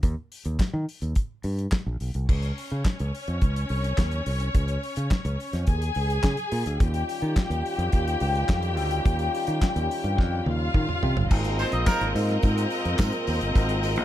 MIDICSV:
0, 0, Header, 1, 6, 480
1, 0, Start_track
1, 0, Key_signature, -4, "major"
1, 0, Tempo, 563380
1, 27, Time_signature, 4, 2, 24, 8
1, 11968, End_track
2, 0, Start_track
2, 0, Title_t, "String section"
2, 0, Program_c, 0, 48
2, 1941, Note_on_c, 0, 61, 69
2, 1943, Note_on_c, 0, 73, 75
2, 4797, Note_off_c, 0, 61, 0
2, 4797, Note_off_c, 0, 73, 0
2, 4838, Note_on_c, 0, 80, 90
2, 4839, Note_on_c, 0, 68, 85
2, 5779, Note_off_c, 0, 68, 0
2, 5779, Note_off_c, 0, 80, 0
2, 5803, Note_on_c, 0, 67, 77
2, 5804, Note_on_c, 0, 79, 81
2, 8886, Note_off_c, 0, 67, 0
2, 8887, Note_off_c, 0, 79, 0
2, 8911, Note_on_c, 0, 77, 89
2, 8914, Note_on_c, 0, 65, 88
2, 9617, Note_off_c, 0, 77, 0
2, 9619, Note_off_c, 0, 65, 0
2, 9630, Note_on_c, 0, 75, 84
2, 9632, Note_on_c, 0, 60, 81
2, 9633, Note_on_c, 0, 70, 79
2, 11968, Note_off_c, 0, 60, 0
2, 11968, Note_off_c, 0, 70, 0
2, 11968, Note_off_c, 0, 75, 0
2, 11968, End_track
3, 0, Start_track
3, 0, Title_t, "Horn section"
3, 0, Program_c, 1, 61
3, 9875, Note_on_c, 1, 53, 91
3, 9875, Note_on_c, 1, 63, 85
3, 9875, Note_on_c, 1, 72, 103
3, 9970, Note_off_c, 1, 53, 0
3, 9970, Note_off_c, 1, 63, 0
3, 9970, Note_off_c, 1, 72, 0
3, 9990, Note_on_c, 1, 60, 83
3, 9990, Note_on_c, 1, 75, 95
3, 9992, Note_on_c, 1, 70, 84
3, 10087, Note_off_c, 1, 60, 0
3, 10087, Note_off_c, 1, 75, 0
3, 10088, Note_off_c, 1, 70, 0
3, 10115, Note_on_c, 1, 53, 102
3, 10115, Note_on_c, 1, 70, 117
3, 10116, Note_on_c, 1, 63, 107
3, 10305, Note_off_c, 1, 53, 0
3, 10305, Note_off_c, 1, 70, 0
3, 10306, Note_off_c, 1, 63, 0
3, 11968, End_track
4, 0, Start_track
4, 0, Title_t, "French horn section"
4, 0, Program_c, 2, 60
4, 5800, Note_on_c, 2, 51, 78
4, 5801, Note_on_c, 2, 61, 69
4, 5803, Note_on_c, 2, 55, 72
4, 5804, Note_on_c, 2, 65, 87
4, 9603, Note_off_c, 2, 51, 0
4, 9603, Note_off_c, 2, 61, 0
4, 9604, Note_off_c, 2, 55, 0
4, 9605, Note_off_c, 2, 65, 0
4, 9639, Note_on_c, 2, 58, 74
4, 9640, Note_on_c, 2, 46, 88
4, 9641, Note_on_c, 2, 56, 74
4, 9641, Note_on_c, 2, 65, 78
4, 11529, Note_off_c, 2, 58, 0
4, 11547, Note_on_c, 2, 60, 68
4, 11968, Note_off_c, 2, 46, 0
4, 11968, Note_off_c, 2, 56, 0
4, 11968, Note_off_c, 2, 60, 0
4, 11968, Note_off_c, 2, 65, 0
4, 11968, End_track
5, 0, Start_track
5, 0, Title_t, "Fingered electric bass"
5, 0, Program_c, 3, 33
5, 27, Note_on_c, 3, 39, 107
5, 119, Note_off_c, 3, 39, 0
5, 388, Note_on_c, 3, 39, 83
5, 480, Note_off_c, 3, 39, 0
5, 626, Note_on_c, 3, 51, 102
5, 719, Note_off_c, 3, 51, 0
5, 868, Note_on_c, 3, 39, 77
5, 960, Note_off_c, 3, 39, 0
5, 1228, Note_on_c, 3, 43, 88
5, 1412, Note_off_c, 3, 43, 0
5, 1588, Note_on_c, 3, 34, 90
5, 1681, Note_off_c, 3, 34, 0
5, 1710, Note_on_c, 3, 35, 80
5, 1802, Note_off_c, 3, 35, 0
5, 1831, Note_on_c, 3, 36, 82
5, 1922, Note_off_c, 3, 36, 0
5, 1951, Note_on_c, 3, 37, 104
5, 2135, Note_off_c, 3, 37, 0
5, 2314, Note_on_c, 3, 49, 78
5, 2405, Note_off_c, 3, 49, 0
5, 2558, Note_on_c, 3, 37, 88
5, 2647, Note_off_c, 3, 37, 0
5, 2794, Note_on_c, 3, 41, 80
5, 2885, Note_off_c, 3, 41, 0
5, 2913, Note_on_c, 3, 37, 80
5, 3097, Note_off_c, 3, 37, 0
5, 3153, Note_on_c, 3, 36, 86
5, 3337, Note_off_c, 3, 36, 0
5, 3390, Note_on_c, 3, 39, 84
5, 3575, Note_off_c, 3, 39, 0
5, 3633, Note_on_c, 3, 36, 76
5, 3817, Note_off_c, 3, 36, 0
5, 3875, Note_on_c, 3, 37, 95
5, 4059, Note_off_c, 3, 37, 0
5, 4235, Note_on_c, 3, 49, 89
5, 4326, Note_off_c, 3, 49, 0
5, 4471, Note_on_c, 3, 37, 97
5, 4565, Note_off_c, 3, 37, 0
5, 4714, Note_on_c, 3, 41, 81
5, 4806, Note_off_c, 3, 41, 0
5, 4835, Note_on_c, 3, 39, 88
5, 5019, Note_off_c, 3, 39, 0
5, 5078, Note_on_c, 3, 37, 90
5, 5261, Note_off_c, 3, 37, 0
5, 5314, Note_on_c, 3, 49, 90
5, 5407, Note_off_c, 3, 49, 0
5, 5555, Note_on_c, 3, 46, 83
5, 5648, Note_off_c, 3, 46, 0
5, 5675, Note_on_c, 3, 38, 85
5, 5768, Note_off_c, 3, 38, 0
5, 5798, Note_on_c, 3, 39, 95
5, 5981, Note_off_c, 3, 39, 0
5, 6153, Note_on_c, 3, 51, 84
5, 6247, Note_off_c, 3, 51, 0
5, 6391, Note_on_c, 3, 39, 95
5, 6486, Note_off_c, 3, 39, 0
5, 6631, Note_on_c, 3, 41, 100
5, 6726, Note_off_c, 3, 41, 0
5, 6757, Note_on_c, 3, 39, 73
5, 6942, Note_off_c, 3, 39, 0
5, 6997, Note_on_c, 3, 37, 100
5, 7181, Note_off_c, 3, 37, 0
5, 7234, Note_on_c, 3, 41, 94
5, 7475, Note_off_c, 3, 41, 0
5, 7475, Note_on_c, 3, 38, 91
5, 7661, Note_off_c, 3, 38, 0
5, 7715, Note_on_c, 3, 39, 103
5, 7900, Note_off_c, 3, 39, 0
5, 8075, Note_on_c, 3, 51, 76
5, 8168, Note_off_c, 3, 51, 0
5, 8315, Note_on_c, 3, 39, 100
5, 8408, Note_off_c, 3, 39, 0
5, 8555, Note_on_c, 3, 43, 90
5, 8677, Note_off_c, 3, 43, 0
5, 8677, Note_on_c, 3, 41, 96
5, 8861, Note_off_c, 3, 41, 0
5, 8914, Note_on_c, 3, 39, 89
5, 9098, Note_off_c, 3, 39, 0
5, 9153, Note_on_c, 3, 51, 91
5, 9246, Note_off_c, 3, 51, 0
5, 9397, Note_on_c, 3, 48, 96
5, 9488, Note_off_c, 3, 48, 0
5, 9515, Note_on_c, 3, 31, 93
5, 9607, Note_off_c, 3, 31, 0
5, 9638, Note_on_c, 3, 32, 120
5, 9912, Note_off_c, 3, 32, 0
5, 9991, Note_on_c, 3, 34, 90
5, 10084, Note_off_c, 3, 34, 0
5, 10234, Note_on_c, 3, 32, 105
5, 10325, Note_off_c, 3, 32, 0
5, 10352, Note_on_c, 3, 44, 118
5, 10535, Note_off_c, 3, 44, 0
5, 10594, Note_on_c, 3, 44, 110
5, 10776, Note_off_c, 3, 44, 0
5, 10952, Note_on_c, 3, 41, 85
5, 11042, Note_off_c, 3, 41, 0
5, 11068, Note_on_c, 3, 44, 101
5, 11160, Note_off_c, 3, 44, 0
5, 11312, Note_on_c, 3, 39, 88
5, 11401, Note_off_c, 3, 39, 0
5, 11429, Note_on_c, 3, 31, 88
5, 11520, Note_off_c, 3, 31, 0
5, 11548, Note_on_c, 3, 32, 109
5, 11904, Note_off_c, 3, 32, 0
5, 11904, Note_on_c, 3, 34, 84
5, 11968, Note_off_c, 3, 34, 0
5, 11968, End_track
6, 0, Start_track
6, 0, Title_t, "Drums"
6, 24, Note_on_c, 9, 42, 68
6, 26, Note_on_c, 9, 36, 103
6, 109, Note_off_c, 9, 42, 0
6, 112, Note_off_c, 9, 36, 0
6, 270, Note_on_c, 9, 46, 65
6, 356, Note_off_c, 9, 46, 0
6, 379, Note_on_c, 9, 42, 49
6, 465, Note_off_c, 9, 42, 0
6, 504, Note_on_c, 9, 42, 56
6, 505, Note_on_c, 9, 36, 109
6, 509, Note_on_c, 9, 39, 86
6, 517, Note_on_c, 9, 38, 97
6, 589, Note_off_c, 9, 42, 0
6, 590, Note_off_c, 9, 36, 0
6, 594, Note_off_c, 9, 39, 0
6, 602, Note_off_c, 9, 38, 0
6, 755, Note_on_c, 9, 46, 54
6, 840, Note_off_c, 9, 46, 0
6, 866, Note_on_c, 9, 42, 40
6, 951, Note_off_c, 9, 42, 0
6, 984, Note_on_c, 9, 42, 59
6, 989, Note_on_c, 9, 36, 91
6, 1069, Note_off_c, 9, 42, 0
6, 1074, Note_off_c, 9, 36, 0
6, 1222, Note_on_c, 9, 46, 50
6, 1307, Note_off_c, 9, 46, 0
6, 1351, Note_on_c, 9, 42, 50
6, 1436, Note_off_c, 9, 42, 0
6, 1463, Note_on_c, 9, 39, 83
6, 1466, Note_on_c, 9, 36, 96
6, 1466, Note_on_c, 9, 42, 57
6, 1471, Note_on_c, 9, 38, 105
6, 1548, Note_off_c, 9, 39, 0
6, 1551, Note_off_c, 9, 36, 0
6, 1552, Note_off_c, 9, 42, 0
6, 1556, Note_off_c, 9, 38, 0
6, 1706, Note_on_c, 9, 46, 62
6, 1791, Note_off_c, 9, 46, 0
6, 1825, Note_on_c, 9, 42, 48
6, 1910, Note_off_c, 9, 42, 0
6, 1950, Note_on_c, 9, 36, 117
6, 1951, Note_on_c, 9, 49, 97
6, 2036, Note_off_c, 9, 36, 0
6, 2036, Note_off_c, 9, 49, 0
6, 2066, Note_on_c, 9, 42, 43
6, 2151, Note_off_c, 9, 42, 0
6, 2196, Note_on_c, 9, 46, 59
6, 2281, Note_off_c, 9, 46, 0
6, 2302, Note_on_c, 9, 42, 49
6, 2387, Note_off_c, 9, 42, 0
6, 2425, Note_on_c, 9, 42, 60
6, 2428, Note_on_c, 9, 36, 106
6, 2430, Note_on_c, 9, 39, 83
6, 2437, Note_on_c, 9, 38, 98
6, 2510, Note_off_c, 9, 42, 0
6, 2513, Note_off_c, 9, 36, 0
6, 2515, Note_off_c, 9, 39, 0
6, 2523, Note_off_c, 9, 38, 0
6, 2551, Note_on_c, 9, 42, 45
6, 2637, Note_off_c, 9, 42, 0
6, 2680, Note_on_c, 9, 46, 55
6, 2765, Note_off_c, 9, 46, 0
6, 2790, Note_on_c, 9, 42, 41
6, 2876, Note_off_c, 9, 42, 0
6, 2910, Note_on_c, 9, 42, 59
6, 2913, Note_on_c, 9, 36, 102
6, 2995, Note_off_c, 9, 42, 0
6, 2998, Note_off_c, 9, 36, 0
6, 3036, Note_on_c, 9, 42, 46
6, 3121, Note_off_c, 9, 42, 0
6, 3144, Note_on_c, 9, 46, 46
6, 3229, Note_off_c, 9, 46, 0
6, 3274, Note_on_c, 9, 42, 48
6, 3359, Note_off_c, 9, 42, 0
6, 3389, Note_on_c, 9, 39, 82
6, 3390, Note_on_c, 9, 36, 94
6, 3392, Note_on_c, 9, 42, 62
6, 3396, Note_on_c, 9, 38, 97
6, 3474, Note_off_c, 9, 39, 0
6, 3475, Note_off_c, 9, 36, 0
6, 3477, Note_off_c, 9, 42, 0
6, 3482, Note_off_c, 9, 38, 0
6, 3503, Note_on_c, 9, 42, 39
6, 3589, Note_off_c, 9, 42, 0
6, 3630, Note_on_c, 9, 46, 66
6, 3715, Note_off_c, 9, 46, 0
6, 3748, Note_on_c, 9, 42, 50
6, 3833, Note_off_c, 9, 42, 0
6, 3873, Note_on_c, 9, 42, 69
6, 3874, Note_on_c, 9, 36, 116
6, 3958, Note_off_c, 9, 42, 0
6, 3959, Note_off_c, 9, 36, 0
6, 3987, Note_on_c, 9, 42, 46
6, 4072, Note_off_c, 9, 42, 0
6, 4119, Note_on_c, 9, 46, 57
6, 4204, Note_off_c, 9, 46, 0
6, 4226, Note_on_c, 9, 42, 50
6, 4311, Note_off_c, 9, 42, 0
6, 4349, Note_on_c, 9, 42, 60
6, 4352, Note_on_c, 9, 36, 105
6, 4354, Note_on_c, 9, 39, 82
6, 4362, Note_on_c, 9, 38, 103
6, 4434, Note_off_c, 9, 42, 0
6, 4437, Note_off_c, 9, 36, 0
6, 4439, Note_off_c, 9, 39, 0
6, 4447, Note_off_c, 9, 38, 0
6, 4472, Note_on_c, 9, 42, 49
6, 4558, Note_off_c, 9, 42, 0
6, 4601, Note_on_c, 9, 46, 57
6, 4686, Note_off_c, 9, 46, 0
6, 4713, Note_on_c, 9, 42, 45
6, 4721, Note_on_c, 9, 38, 33
6, 4798, Note_off_c, 9, 42, 0
6, 4806, Note_off_c, 9, 38, 0
6, 4828, Note_on_c, 9, 42, 59
6, 4835, Note_on_c, 9, 36, 94
6, 4913, Note_off_c, 9, 42, 0
6, 4921, Note_off_c, 9, 36, 0
6, 4956, Note_on_c, 9, 42, 48
6, 5042, Note_off_c, 9, 42, 0
6, 5066, Note_on_c, 9, 46, 46
6, 5151, Note_off_c, 9, 46, 0
6, 5197, Note_on_c, 9, 42, 51
6, 5282, Note_off_c, 9, 42, 0
6, 5311, Note_on_c, 9, 39, 80
6, 5313, Note_on_c, 9, 36, 100
6, 5314, Note_on_c, 9, 42, 57
6, 5319, Note_on_c, 9, 38, 102
6, 5396, Note_off_c, 9, 39, 0
6, 5398, Note_off_c, 9, 36, 0
6, 5399, Note_off_c, 9, 42, 0
6, 5404, Note_off_c, 9, 38, 0
6, 5428, Note_on_c, 9, 42, 39
6, 5513, Note_off_c, 9, 42, 0
6, 5552, Note_on_c, 9, 46, 67
6, 5637, Note_off_c, 9, 46, 0
6, 5672, Note_on_c, 9, 42, 49
6, 5757, Note_off_c, 9, 42, 0
6, 5795, Note_on_c, 9, 42, 67
6, 5796, Note_on_c, 9, 36, 119
6, 5881, Note_off_c, 9, 42, 0
6, 5882, Note_off_c, 9, 36, 0
6, 5911, Note_on_c, 9, 42, 44
6, 5997, Note_off_c, 9, 42, 0
6, 6041, Note_on_c, 9, 46, 65
6, 6126, Note_off_c, 9, 46, 0
6, 6149, Note_on_c, 9, 42, 44
6, 6234, Note_off_c, 9, 42, 0
6, 6272, Note_on_c, 9, 42, 68
6, 6274, Note_on_c, 9, 36, 108
6, 6277, Note_on_c, 9, 39, 81
6, 6285, Note_on_c, 9, 38, 106
6, 6357, Note_off_c, 9, 42, 0
6, 6359, Note_off_c, 9, 36, 0
6, 6362, Note_off_c, 9, 39, 0
6, 6370, Note_off_c, 9, 38, 0
6, 6397, Note_on_c, 9, 42, 49
6, 6482, Note_off_c, 9, 42, 0
6, 6523, Note_on_c, 9, 46, 54
6, 6608, Note_off_c, 9, 46, 0
6, 6637, Note_on_c, 9, 42, 48
6, 6722, Note_off_c, 9, 42, 0
6, 6751, Note_on_c, 9, 42, 61
6, 6757, Note_on_c, 9, 36, 99
6, 6836, Note_off_c, 9, 42, 0
6, 6843, Note_off_c, 9, 36, 0
6, 6880, Note_on_c, 9, 42, 46
6, 6965, Note_off_c, 9, 42, 0
6, 6989, Note_on_c, 9, 46, 49
6, 7074, Note_off_c, 9, 46, 0
6, 7118, Note_on_c, 9, 42, 46
6, 7203, Note_off_c, 9, 42, 0
6, 7232, Note_on_c, 9, 39, 82
6, 7234, Note_on_c, 9, 36, 107
6, 7235, Note_on_c, 9, 42, 60
6, 7239, Note_on_c, 9, 38, 101
6, 7317, Note_off_c, 9, 39, 0
6, 7319, Note_off_c, 9, 36, 0
6, 7320, Note_off_c, 9, 42, 0
6, 7325, Note_off_c, 9, 38, 0
6, 7349, Note_on_c, 9, 42, 45
6, 7434, Note_off_c, 9, 42, 0
6, 7473, Note_on_c, 9, 46, 66
6, 7558, Note_off_c, 9, 46, 0
6, 7589, Note_on_c, 9, 42, 55
6, 7674, Note_off_c, 9, 42, 0
6, 7715, Note_on_c, 9, 36, 125
6, 7715, Note_on_c, 9, 42, 67
6, 7800, Note_off_c, 9, 42, 0
6, 7801, Note_off_c, 9, 36, 0
6, 7829, Note_on_c, 9, 42, 46
6, 7914, Note_off_c, 9, 42, 0
6, 7961, Note_on_c, 9, 46, 63
6, 8047, Note_off_c, 9, 46, 0
6, 8067, Note_on_c, 9, 42, 53
6, 8153, Note_off_c, 9, 42, 0
6, 8193, Note_on_c, 9, 42, 61
6, 8194, Note_on_c, 9, 36, 106
6, 8198, Note_on_c, 9, 39, 82
6, 8205, Note_on_c, 9, 38, 106
6, 8278, Note_off_c, 9, 42, 0
6, 8279, Note_off_c, 9, 36, 0
6, 8283, Note_off_c, 9, 39, 0
6, 8290, Note_off_c, 9, 38, 0
6, 8316, Note_on_c, 9, 42, 47
6, 8401, Note_off_c, 9, 42, 0
6, 8444, Note_on_c, 9, 46, 61
6, 8529, Note_off_c, 9, 46, 0
6, 8556, Note_on_c, 9, 42, 42
6, 8641, Note_off_c, 9, 42, 0
6, 8677, Note_on_c, 9, 36, 103
6, 8685, Note_on_c, 9, 38, 54
6, 8762, Note_off_c, 9, 36, 0
6, 8770, Note_off_c, 9, 38, 0
6, 8915, Note_on_c, 9, 48, 67
6, 9001, Note_off_c, 9, 48, 0
6, 9154, Note_on_c, 9, 36, 104
6, 9156, Note_on_c, 9, 47, 79
6, 9239, Note_off_c, 9, 36, 0
6, 9241, Note_off_c, 9, 47, 0
6, 9276, Note_on_c, 9, 45, 72
6, 9361, Note_off_c, 9, 45, 0
6, 9395, Note_on_c, 9, 43, 92
6, 9480, Note_off_c, 9, 43, 0
6, 9515, Note_on_c, 9, 43, 96
6, 9600, Note_off_c, 9, 43, 0
6, 9633, Note_on_c, 9, 54, 54
6, 9634, Note_on_c, 9, 49, 116
6, 9636, Note_on_c, 9, 36, 119
6, 9718, Note_off_c, 9, 54, 0
6, 9719, Note_off_c, 9, 49, 0
6, 9721, Note_off_c, 9, 36, 0
6, 9749, Note_on_c, 9, 42, 51
6, 9834, Note_off_c, 9, 42, 0
6, 9873, Note_on_c, 9, 54, 60
6, 9880, Note_on_c, 9, 46, 72
6, 9959, Note_off_c, 9, 54, 0
6, 9965, Note_off_c, 9, 46, 0
6, 9985, Note_on_c, 9, 42, 52
6, 10070, Note_off_c, 9, 42, 0
6, 10109, Note_on_c, 9, 42, 65
6, 10111, Note_on_c, 9, 36, 111
6, 10114, Note_on_c, 9, 39, 82
6, 10121, Note_on_c, 9, 38, 112
6, 10124, Note_on_c, 9, 54, 109
6, 10194, Note_off_c, 9, 42, 0
6, 10197, Note_off_c, 9, 36, 0
6, 10199, Note_off_c, 9, 39, 0
6, 10207, Note_off_c, 9, 38, 0
6, 10209, Note_off_c, 9, 54, 0
6, 10231, Note_on_c, 9, 42, 54
6, 10316, Note_off_c, 9, 42, 0
6, 10357, Note_on_c, 9, 46, 61
6, 10358, Note_on_c, 9, 54, 56
6, 10442, Note_off_c, 9, 46, 0
6, 10443, Note_off_c, 9, 54, 0
6, 10469, Note_on_c, 9, 42, 43
6, 10478, Note_on_c, 9, 38, 38
6, 10555, Note_off_c, 9, 42, 0
6, 10563, Note_off_c, 9, 38, 0
6, 10587, Note_on_c, 9, 42, 62
6, 10594, Note_on_c, 9, 36, 102
6, 10594, Note_on_c, 9, 54, 42
6, 10672, Note_off_c, 9, 42, 0
6, 10679, Note_off_c, 9, 36, 0
6, 10679, Note_off_c, 9, 54, 0
6, 10715, Note_on_c, 9, 42, 55
6, 10800, Note_off_c, 9, 42, 0
6, 10824, Note_on_c, 9, 46, 53
6, 10837, Note_on_c, 9, 54, 36
6, 10909, Note_off_c, 9, 46, 0
6, 10922, Note_off_c, 9, 54, 0
6, 10952, Note_on_c, 9, 42, 48
6, 11037, Note_off_c, 9, 42, 0
6, 11066, Note_on_c, 9, 39, 96
6, 11068, Note_on_c, 9, 36, 101
6, 11069, Note_on_c, 9, 42, 65
6, 11072, Note_on_c, 9, 54, 100
6, 11073, Note_on_c, 9, 38, 124
6, 11151, Note_off_c, 9, 39, 0
6, 11153, Note_off_c, 9, 36, 0
6, 11154, Note_off_c, 9, 42, 0
6, 11157, Note_off_c, 9, 54, 0
6, 11158, Note_off_c, 9, 38, 0
6, 11181, Note_on_c, 9, 42, 47
6, 11266, Note_off_c, 9, 42, 0
6, 11306, Note_on_c, 9, 46, 73
6, 11308, Note_on_c, 9, 54, 49
6, 11391, Note_off_c, 9, 46, 0
6, 11393, Note_off_c, 9, 54, 0
6, 11425, Note_on_c, 9, 42, 53
6, 11510, Note_off_c, 9, 42, 0
6, 11547, Note_on_c, 9, 54, 56
6, 11549, Note_on_c, 9, 36, 127
6, 11551, Note_on_c, 9, 42, 74
6, 11632, Note_off_c, 9, 54, 0
6, 11634, Note_off_c, 9, 36, 0
6, 11636, Note_off_c, 9, 42, 0
6, 11663, Note_on_c, 9, 42, 46
6, 11748, Note_off_c, 9, 42, 0
6, 11783, Note_on_c, 9, 54, 60
6, 11790, Note_on_c, 9, 46, 71
6, 11868, Note_off_c, 9, 54, 0
6, 11875, Note_off_c, 9, 46, 0
6, 11895, Note_on_c, 9, 42, 54
6, 11968, Note_off_c, 9, 42, 0
6, 11968, End_track
0, 0, End_of_file